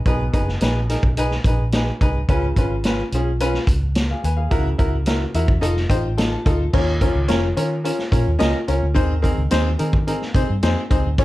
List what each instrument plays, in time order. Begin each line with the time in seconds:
0.06 fingered electric bass B1, grand piano B2 D#4 G#4 B4, kick, closed hi-hat
0.33 fingered electric bass F#1, grand piano D#4 G#4 B4, kick, closed hi-hat
0.48 snare
0.61 fingered electric bass A#1, grand piano D#4 G#4 B4, snare, closed hi-hat
0.89 grand piano D#4 G#4 A#4, snare, closed hi-hat
1.03 fingered electric bass B1, kick
1.17 grand piano D#4 G#4 B4, closed hi-hat
1.31 snare
1.44 fingered electric bass A#1, grand piano D#4 G#4 B4, kick, closed hi-hat
1.72 grand piano D#4 G#4 B4, snare, closed hi-hat
2.01 fingered electric bass C2, grand piano D#4 G#4 B4, kick, closed hi-hat
2.29 fingered electric bass C#2, grand piano C#3 C#4 F4 B4, kick, closed hi-hat
2.56 fingered electric bass G#1, grand piano C#4 F4 B4, kick, closed hi-hat
2.84 grand piano C#4 F4 B4, snare, closed hi-hat
3.12 fingered electric bass B1, grand piano C#4 F4 G#4, closed hi-hat
3.40 grand piano C#4 F4 B4, closed hi-hat
3.54 snare
3.67 fingered electric bass C#2, kick, closed hi-hat
3.95 snare, closed hi-hat
4.11 grand piano G#4 F5
4.24 fingered electric bass D#2, grand piano B4 G#5, closed hi-hat
4.37 grand piano G#4 F5
4.51 fingered electric bass C#2, grand piano C#3 E4 F#4 A#4, kick, closed hi-hat
4.78 fingered electric bass C#2, grand piano E4 F#4 A#4, kick, closed hi-hat
5.06 grand piano E4 F#4 A#4, snare, closed hi-hat
5.34 fingered electric bass E2, grand piano E4 F#4 A#4 E5, closed hi-hat
5.48 kick
5.61 fingered electric bass F1, grand piano D#4 F4 A4 D#5, closed hi-hat
5.76 snare
5.90 fingered electric bass A1, grand piano D#4 F4 C5 G5, kick, closed hi-hat
6.17 grand piano D#4 F4 A4 A5, snare, closed hi-hat
6.32 grand piano A5
6.45 fingered electric bass D2, grand piano D#4 F4 A4, kick, closed hi-hat
6.73 fingered electric bass D#2, grand piano D#3 C#4 F4 A#4 C#5, kick, crash
7.01 grand piano C#4 F4 A#4 C#5, kick, closed hi-hat
7.15 fingered electric bass C#2
7.28 fingered electric bass F1, grand piano C#4 F4 A#4 C#5, snare, closed hi-hat
7.56 fingered electric bass D#3, grand piano C#4 F4 A#4 C#5, closed hi-hat
7.84 grand piano C#4 F4 A#4 C#5, closed hi-hat
7.99 snare
8.12 fingered electric bass A#2, grand piano C#4 F4 A#4 C#5, kick, closed hi-hat
8.27 fingered electric bass D#2
8.39 fingered electric bass C#2, grand piano C#4 F4 A#4 D#5, snare, closed hi-hat
8.68 fingered electric bass C#2, grand piano C#4 F4 A#4 C#5, closed hi-hat
8.82 fingered electric bass D2
8.94 grand piano D#3 C4 D#4 G#4 C5, kick, closed hi-hat
9.22 grand piano C4 D#4 G#4 A#4, kick, closed hi-hat
9.38 fingered electric bass C#2
9.51 fingered electric bass D#2, grand piano C4 D#4 G#4 C5, snare, closed hi-hat
9.79 fingered electric bass D#3, grand piano C4 D#4 G#4 A#4, closed hi-hat
9.93 kick
10.07 grand piano C4 D#4 G#4 A#4, closed hi-hat
10.22 snare
10.34 fingered electric bass C3, grand piano C4 D#4 G#4 C5, kick, closed hi-hat
10.49 fingered electric bass G2
10.63 fingered electric bass F2, grand piano C4 D#4 G#4 C5, snare, closed hi-hat
10.90 fingered electric bass C#2, grand piano C4 D#4 G#4 C5, kick, closed hi-hat
11.06 fingered electric bass D2
11.18 fingered electric bass D#2, grand piano D#3 C#4 F4 G#4 C#5, kick, closed hi-hat